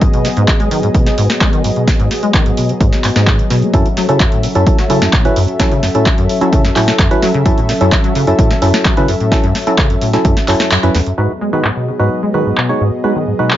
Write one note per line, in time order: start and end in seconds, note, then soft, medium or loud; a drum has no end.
0.00 0.08 G#2 medium
0.00 11.14 F#3 medium
0.00 3.70 B3 medium
0.00 3.70 G#4 medium
0.00 3.70 D#5 medium
0.00 kick loud
0.00 closed hi-hat medium
0.13 0.26 B2 medium
0.13 closed hi-hat soft
0.25 0.29 C#3 medium
0.25 snare soft
0.25 open hi-hat loud
0.37 0.46 G#2 loud
0.37 closed hi-hat medium
0.48 kick loud
0.48 clap loud
0.48 closed hi-hat medium
0.60 0.69 G#3 loud
0.60 closed hi-hat soft
0.71 0.81 D#3 loud
0.71 open hi-hat loud
0.83 0.89 G#2 medium
0.83 closed hi-hat soft
0.94 1.08 B2 medium
0.94 kick loud
0.94 closed hi-hat medium
1.06 1.10 C#3 medium
1.06 snare soft
1.06 closed hi-hat soft
1.18 1.28 G#2 loud
1.18 open hi-hat loud
1.30 snare medium
1.41 1.51 G#3 loud
1.41 kick loud
1.41 clap loud
1.41 closed hi-hat medium
1.53 1.62 D#3 loud
1.53 closed hi-hat soft
1.64 1.71 G#2 medium
1.64 open hi-hat loud
1.76 1.89 B2 medium
1.76 closed hi-hat soft
1.88 1.92 C#3 medium
1.88 kick loud
1.88 snare medium
1.88 closed hi-hat medium
2.00 2.09 G#2 loud
2.00 closed hi-hat soft
2.11 snare soft
2.11 open hi-hat loud
2.23 2.32 G#3 loud
2.23 closed hi-hat soft
2.34 2.44 D#3 loud
2.34 kick loud
2.34 clap loud
2.34 closed hi-hat medium
2.46 2.52 G#2 medium
2.46 closed hi-hat soft
2.57 2.71 B2 medium
2.57 open hi-hat loud
2.69 2.73 C#3 medium
2.69 closed hi-hat soft
2.81 2.90 G#2 loud
2.81 kick loud
2.81 closed hi-hat medium
2.93 snare soft
2.93 closed hi-hat soft
3.04 3.10 G#2 medium
3.04 clap medium
3.04 open hi-hat loud
3.16 3.41 G#2 loud
3.16 snare medium
3.16 closed hi-hat soft
3.27 kick loud
3.27 clap loud
3.27 closed hi-hat medium
3.39 3.43 C#3 medium
3.39 closed hi-hat soft
3.50 3.64 B2 loud
3.50 snare soft
3.50 open hi-hat loud
3.62 3.72 B3 loud
3.62 closed hi-hat soft
3.73 3.83 F#2 loud
3.73 3.88 F#3 medium
3.73 11.14 C#4 medium
3.73 3.88 C#4 medium
3.73 3.88 E4 medium
3.73 11.14 A4 medium
3.73 3.88 A4 medium
3.73 11.14 E5 medium
3.73 kick loud
3.73 closed hi-hat medium
3.86 closed hi-hat soft
3.97 4.07 F#3 loud
3.97 snare soft
3.97 open hi-hat loud
4.09 4.18 C#3 loud
4.09 4.22 F#3 medium
4.09 4.22 C#4 medium
4.09 4.22 E4 medium
4.09 4.22 A4 loud
4.09 closed hi-hat medium
4.20 4.27 F#2 medium
4.20 kick loud
4.20 clap loud
4.20 closed hi-hat medium
4.32 4.45 A2 medium
4.32 closed hi-hat soft
4.43 4.47 B2 medium
4.43 open hi-hat loud
4.55 4.65 F#2 loud
4.55 4.78 F#3 loud
4.55 4.78 C#4 medium
4.55 4.78 E4 medium
4.55 4.78 A4 loud
4.55 closed hi-hat medium
4.67 kick loud
4.67 closed hi-hat medium
4.78 4.88 F#3 loud
4.78 snare soft
4.78 closed hi-hat soft
4.90 5.00 C#3 loud
4.90 5.12 F#3 medium
4.90 5.12 C#4 medium
4.90 5.12 E4 medium
4.90 5.12 A4 loud
4.90 open hi-hat loud
5.02 5.08 F#2 medium
5.02 snare medium
5.02 closed hi-hat soft
5.13 5.27 A2 medium
5.13 kick loud
5.13 clap loud
5.13 closed hi-hat medium
5.25 5.29 B2 medium
5.25 5.39 F#3 medium
5.25 5.39 C#4 medium
5.25 5.39 E4 medium
5.25 5.39 B4 medium
5.25 closed hi-hat soft
5.36 5.46 F#2 loud
5.36 open hi-hat loud
5.48 closed hi-hat soft
5.60 5.69 F#3 loud
5.60 5.74 F#3 medium
5.60 5.74 C#4 medium
5.60 5.74 E4 medium
5.60 5.74 A4 medium
5.60 kick loud
5.60 snare medium
5.60 closed hi-hat medium
5.71 5.81 C#3 loud
5.71 closed hi-hat soft
5.83 5.89 F#2 medium
5.83 snare soft
5.83 open hi-hat loud
5.95 6.08 A2 medium
5.95 6.08 F#3 medium
5.95 6.08 C#4 medium
5.95 6.09 E4 medium
5.95 6.08 A4 loud
5.95 closed hi-hat medium
6.06 6.10 B2 medium
6.06 kick loud
6.06 clap loud
6.06 closed hi-hat medium
6.18 6.27 F#2 loud
6.18 closed hi-hat soft
6.29 open hi-hat loud
6.41 6.64 F#3 loud
6.41 6.51 F#3 loud
6.41 6.64 C#4 medium
6.41 6.64 E4 medium
6.41 6.64 A4 loud
6.41 closed hi-hat medium
6.53 6.63 C#3 loud
6.53 kick loud
6.53 closed hi-hat medium
6.65 6.71 F#2 medium
6.65 snare soft
6.65 closed hi-hat soft
6.76 6.89 A2 medium
6.76 6.98 F#3 medium
6.76 6.98 C#4 medium
6.76 6.98 E4 medium
6.76 6.98 A4 loud
6.76 clap medium
6.76 open hi-hat loud
6.88 6.92 B2 medium
6.88 snare medium
6.99 7.09 F#2 loud
6.99 kick loud
6.99 clap loud
6.99 closed hi-hat medium
7.11 7.25 F#3 medium
7.11 7.25 C#4 medium
7.11 7.25 E4 medium
7.11 7.25 B4 medium
7.11 closed hi-hat soft
7.22 7.32 F#3 loud
7.22 snare soft
7.22 open hi-hat loud
7.34 7.44 C#3 loud
7.34 closed hi-hat soft
7.46 7.52 F#2 medium
7.46 7.60 F#3 medium
7.46 7.60 C#4 medium
7.46 7.60 E4 medium
7.46 7.60 A4 medium
7.46 kick loud
7.46 closed hi-hat medium
7.58 7.71 A2 medium
7.58 closed hi-hat soft
7.69 7.73 B2 medium
7.69 snare soft
7.69 open hi-hat loud
7.81 7.90 F#2 loud
7.81 7.95 F#3 medium
7.81 7.95 C#4 medium
7.81 7.95 E4 medium
7.81 7.95 A4 loud
7.81 closed hi-hat medium
7.92 kick loud
7.92 clap loud
7.92 closed hi-hat medium
8.04 8.13 F#3 loud
8.04 closed hi-hat soft
8.15 8.25 C#3 loud
8.15 open hi-hat loud
8.27 8.34 F#2 medium
8.27 8.50 F#3 loud
8.27 8.50 C#4 medium
8.27 8.50 E4 medium
8.27 8.50 A4 loud
8.27 closed hi-hat medium
8.39 8.52 A2 medium
8.39 kick loud
8.39 closed hi-hat medium
8.51 8.54 B2 medium
8.51 snare soft
8.51 closed hi-hat soft
8.62 8.72 F#2 loud
8.62 8.84 F#3 medium
8.62 8.84 C#4 medium
8.62 8.84 E4 medium
8.62 8.84 A4 loud
8.62 open hi-hat loud
8.74 snare medium
8.74 closed hi-hat soft
8.85 8.95 F#3 loud
8.85 kick loud
8.85 clap loud
8.85 closed hi-hat medium
8.97 9.06 C#3 loud
8.97 9.11 F#3 medium
8.97 9.11 C#4 medium
8.97 9.11 E4 medium
8.97 9.11 B4 medium
8.97 closed hi-hat soft
9.08 9.15 F#2 medium
9.08 open hi-hat loud
9.20 9.33 A2 medium
9.20 closed hi-hat soft
9.32 9.36 B2 medium
9.32 9.46 F#3 medium
9.32 9.46 C#4 medium
9.32 9.46 E4 medium
9.32 9.46 A4 medium
9.32 kick loud
9.32 snare medium
9.32 closed hi-hat medium
9.44 9.53 F#2 loud
9.44 closed hi-hat soft
9.55 snare soft
9.55 open hi-hat loud
9.67 9.76 F#3 loud
9.67 9.81 F#3 medium
9.67 9.81 C#4 medium
9.67 9.81 E4 medium
9.67 9.81 A4 loud
9.67 closed hi-hat medium
9.78 9.88 C#3 loud
9.78 kick loud
9.78 clap loud
9.78 closed hi-hat medium
9.90 9.96 F#2 medium
9.90 closed hi-hat soft
10.01 10.15 A2 medium
10.01 open hi-hat loud
10.13 10.17 B2 medium
10.13 10.36 F#3 loud
10.13 10.36 C#4 medium
10.13 10.36 E4 medium
10.13 10.36 A4 loud
10.13 snare soft
10.13 closed hi-hat medium
10.25 10.35 F#2 loud
10.25 kick loud
10.25 closed hi-hat medium
10.37 snare soft
10.37 closed hi-hat soft
10.48 10.55 F#2 medium
10.48 10.70 F#3 medium
10.48 10.70 C#4 medium
10.48 10.70 E4 medium
10.48 10.70 A4 loud
10.48 clap medium
10.48 open hi-hat loud
10.60 10.64 A3 medium
10.60 snare medium
10.60 closed hi-hat soft
10.71 10.78 F#2 medium
10.71 clap loud
10.71 closed hi-hat medium
10.83 10.89 F#2 loud
10.83 10.97 F#3 medium
10.83 10.97 C#4 medium
10.83 10.97 E4 medium
10.83 10.97 B4 medium
10.83 closed hi-hat soft
10.95 11.01 E2 loud
10.95 snare soft
10.95 open hi-hat loud
11.06 11.13 F#2 medium
11.06 closed hi-hat soft
11.18 11.28 G#2 loud
11.18 13.57 F#3 medium
11.18 11.32 G#3 medium
11.18 13.57 B3 medium
11.18 11.32 D#4 medium
11.18 11.32 F#4 medium
11.18 13.57 G#4 medium
11.18 11.32 B4 medium
11.18 13.57 D#5 medium
11.41 11.51 G#3 loud
11.53 11.62 D#3 loud
11.53 11.67 G#3 medium
11.53 11.67 D#4 medium
11.53 11.67 F#4 medium
11.53 11.67 B4 loud
11.64 11.71 G#2 medium
11.64 clap loud
11.76 11.89 B2 medium
11.87 11.91 C#3 medium
11.99 12.09 G#2 medium
11.99 12.22 G#3 loud
11.99 12.22 D#4 medium
11.99 12.22 F#4 medium
11.99 12.22 B4 loud
12.23 12.32 G#3 loud
12.34 12.44 D#3 loud
12.34 12.56 G#3 medium
12.34 12.56 D#4 medium
12.34 12.56 F#4 medium
12.34 12.56 B4 loud
12.46 12.52 G#2 medium
12.57 12.71 B2 medium
12.57 clap loud
12.69 12.73 C#3 medium
12.69 12.83 G#3 medium
12.69 12.83 D#4 medium
12.69 12.83 F#4 medium
12.69 12.83 C#5 medium
12.81 12.90 G#2 loud
13.04 13.14 G#3 loud
13.04 13.18 G#3 medium
13.04 13.18 D#4 medium
13.04 13.18 F#4 medium
13.04 13.18 B4 medium
13.16 13.25 D#3 loud
13.27 13.34 G#2 medium
13.39 13.52 B2 medium
13.39 13.53 G#3 medium
13.39 13.53 D#4 medium
13.39 13.53 F#4 medium
13.39 13.53 B4 loud
13.50 13.54 C#3 medium
13.50 clap loud